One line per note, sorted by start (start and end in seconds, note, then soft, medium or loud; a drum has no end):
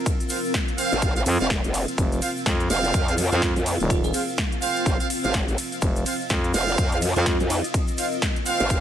0.00 8.80 C4 medium
0.00 8.80 F4 medium
0.00 5.81 A#4 medium
0.00 7.13 F5 medium
0.06 kick loud
0.06 closed hi-hat medium
0.06 ride medium
0.06 shaker medium
0.20 closed hi-hat soft
0.20 shaker soft
0.29 0.39 C4 medium
0.29 0.39 F4 medium
0.29 0.39 C5 medium
0.29 0.39 F5 medium
0.29 open hi-hat loud
0.29 ride medium
0.29 shaker loud
0.45 shaker soft
0.54 kick loud
0.54 snare loud
0.54 closed hi-hat medium
0.54 ride medium
0.54 shaker medium
0.68 closed hi-hat soft
0.78 1.13 C4 loud
0.78 1.13 F4 medium
0.78 1.13 C5 medium
0.78 1.13 F5 loud
0.78 open hi-hat loud
0.78 ride medium
0.78 shaker loud
0.92 1.25 G#1 loud
0.92 closed hi-hat soft
0.92 shaker soft
1.02 kick loud
1.02 closed hi-hat medium
1.02 ride medium
1.02 shaker medium
1.16 1.22 C4 medium
1.16 1.22 F4 medium
1.16 1.22 C5 medium
1.16 1.22 F5 loud
1.16 closed hi-hat medium
1.16 shaker soft
1.26 1.38 F2 medium
1.26 1.35 C4 medium
1.26 open hi-hat loud
1.26 ride medium
1.26 shaker medium
1.40 1.62 F1 loud
1.40 1.50 C4 medium
1.40 1.47 C4 medium
1.40 1.50 F4 medium
1.40 1.50 C5 medium
1.40 1.50 F5 loud
1.40 closed hi-hat soft
1.40 shaker soft
1.50 kick loud
1.50 snare loud
1.50 closed hi-hat medium
1.50 ride medium
1.50 shaker medium
1.64 1.86 F1 medium
1.64 closed hi-hat soft
1.64 shaker soft
1.74 open hi-hat loud
1.74 ride medium
1.74 shaker loud
1.88 closed hi-hat medium
1.88 shaker soft
1.98 2.20 F1 loud
1.98 kick loud
1.98 closed hi-hat medium
1.98 ride medium
1.98 shaker medium
2.12 closed hi-hat soft
2.12 shaker soft
2.22 2.31 C4 medium
2.22 2.31 F4 medium
2.22 2.31 C5 medium
2.22 2.31 F5 medium
2.22 open hi-hat loud
2.22 ride medium
2.22 shaker medium
2.37 shaker soft
2.46 2.68 F2 loud
2.46 kick loud
2.46 snare loud
2.46 closed hi-hat medium
2.46 ride medium
2.46 shaker medium
2.60 closed hi-hat soft
2.70 2.92 F1 loud
2.70 3.05 C4 loud
2.70 3.05 F4 medium
2.70 3.05 C5 medium
2.70 3.05 F5 loud
2.70 open hi-hat loud
2.70 ride medium
2.70 shaker loud
2.84 closed hi-hat soft
2.84 shaker soft
2.94 3.30 F2 loud
2.94 kick loud
2.94 closed hi-hat medium
2.94 ride medium
2.94 shaker medium
3.08 3.14 C4 medium
3.08 3.14 F4 medium
3.08 3.14 C5 medium
3.08 3.14 F5 loud
3.08 closed hi-hat medium
3.08 shaker soft
3.18 open hi-hat loud
3.18 ride medium
3.18 shaker loud
3.32 3.54 F2 loud
3.32 3.42 C4 loud
3.32 3.42 F4 medium
3.32 3.64 F4 medium
3.32 3.42 C5 medium
3.32 3.42 F5 loud
3.32 closed hi-hat soft
3.32 shaker soft
3.42 kick loud
3.42 snare loud
3.42 closed hi-hat medium
3.42 ride medium
3.42 shaker medium
3.56 3.78 F2 loud
3.56 closed hi-hat soft
3.56 shaker soft
3.66 open hi-hat loud
3.66 ride medium
3.66 shaker loud
3.80 4.12 D#1 loud
3.80 closed hi-hat soft
3.80 shaker soft
3.90 4.01 F4 medium
3.90 kick loud
3.90 closed hi-hat medium
3.90 ride medium
3.90 shaker medium
4.04 4.10 G#4 loud
4.04 closed hi-hat soft
4.04 shaker soft
4.14 4.22 C4 medium
4.14 4.22 F4 medium
4.14 4.23 G#4 medium
4.14 4.22 C5 medium
4.14 4.22 F5 medium
4.14 open hi-hat loud
4.14 ride medium
4.14 shaker loud
4.28 shaker soft
4.38 kick loud
4.38 snare loud
4.38 closed hi-hat medium
4.38 ride medium
4.38 shaker medium
4.52 closed hi-hat soft
4.62 4.97 C4 medium
4.62 4.97 F4 loud
4.62 4.97 C5 medium
4.62 4.97 F5 loud
4.62 open hi-hat loud
4.62 ride medium
4.62 shaker loud
4.76 closed hi-hat soft
4.76 shaker soft
4.86 4.98 G#1 loud
4.86 kick loud
4.86 closed hi-hat medium
4.86 ride medium
4.86 shaker medium
5.00 5.06 C4 medium
5.00 5.06 F4 medium
5.00 5.06 C5 medium
5.00 5.06 F5 loud
5.00 closed hi-hat medium
5.00 shaker soft
5.10 open hi-hat loud
5.10 ride medium
5.10 shaker medium
5.24 5.56 G#1 loud
5.24 5.34 C4 medium
5.24 5.34 F4 medium
5.24 5.34 C5 medium
5.24 5.34 F5 loud
5.24 closed hi-hat soft
5.24 shaker soft
5.34 kick loud
5.34 snare loud
5.34 closed hi-hat medium
5.34 ride medium
5.34 shaker medium
5.48 closed hi-hat soft
5.48 shaker soft
5.58 open hi-hat loud
5.58 ride medium
5.58 shaker loud
5.72 closed hi-hat soft
5.72 shaker soft
5.81 6.04 F1 medium
5.81 8.80 D#5 medium
5.81 kick loud
5.81 closed hi-hat medium
5.81 ride medium
5.81 shaker medium
5.96 closed hi-hat soft
5.96 shaker soft
6.06 6.15 C4 medium
6.06 6.15 F4 medium
6.06 6.15 C5 medium
6.06 6.15 F5 medium
6.06 open hi-hat loud
6.06 ride medium
6.06 shaker medium
6.21 shaker soft
6.30 6.52 F2 medium
6.30 kick loud
6.30 snare loud
6.30 closed hi-hat medium
6.30 ride medium
6.30 shaker medium
6.44 closed hi-hat soft
6.54 6.76 F1 loud
6.54 6.89 C4 loud
6.54 6.89 F4 medium
6.54 6.89 C5 medium
6.54 6.89 F5 loud
6.54 open hi-hat loud
6.54 ride medium
6.54 shaker medium
6.68 closed hi-hat soft
6.68 shaker soft
6.78 7.14 F2 medium
6.78 kick loud
6.78 closed hi-hat medium
6.78 ride medium
6.78 shaker medium
6.92 6.98 C4 medium
6.92 6.98 F4 medium
6.92 6.98 C5 medium
6.92 6.98 F5 loud
6.92 closed hi-hat medium
6.92 shaker soft
7.02 open hi-hat loud
7.02 ride medium
7.02 shaker loud
7.10 8.80 A#4 medium
7.16 7.38 F2 loud
7.16 7.26 C4 loud
7.16 7.48 F4 medium
7.16 7.26 F4 medium
7.16 7.26 C5 medium
7.16 7.26 F5 loud
7.16 closed hi-hat soft
7.16 shaker soft
7.26 kick loud
7.26 snare loud
7.26 closed hi-hat medium
7.26 ride medium
7.26 shaker medium
7.40 7.62 F2 loud
7.40 closed hi-hat soft
7.40 shaker soft
7.50 7.63 D#4 medium
7.50 open hi-hat loud
7.50 ride medium
7.50 shaker loud
7.64 closed hi-hat soft
7.64 shaker soft
7.74 kick loud
7.74 closed hi-hat medium
7.74 ride medium
7.74 shaker soft
7.87 closed hi-hat soft
7.87 shaker soft
7.98 8.07 C4 medium
7.98 8.07 F4 medium
7.98 8.07 C5 medium
7.98 8.07 F5 medium
7.98 open hi-hat loud
7.98 ride medium
7.98 shaker medium
8.12 shaker soft
8.22 kick loud
8.22 snare loud
8.22 closed hi-hat medium
8.22 ride medium
8.22 shaker medium
8.36 closed hi-hat soft
8.46 8.80 C4 loud
8.46 8.80 F4 medium
8.46 8.80 C5 medium
8.46 8.80 F5 loud
8.46 open hi-hat loud
8.46 ride medium
8.46 shaker medium
8.60 8.80 G#1 loud
8.60 closed hi-hat soft
8.60 shaker soft
8.69 kick loud
8.69 closed hi-hat medium
8.69 ride medium
8.69 shaker medium